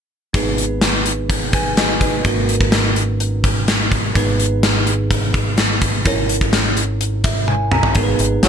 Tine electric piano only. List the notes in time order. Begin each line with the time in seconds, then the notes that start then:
0.33 G#2 B3 D#4 G#4 B4
1.54 B4 G#5
1.78 F#4 D#5
2.01 D#4 B4
2.24 G#2 A#3 C#4 F#4 A#4
4.14 G#2 B3 D#4 G#4 B4
6.05 G#2 C#4 E4 A#4 C#5
7.24 E5
7.48 G#5
7.72 A#5
7.96 G#2 B3 D#4 G#4 A#4
8.04 B4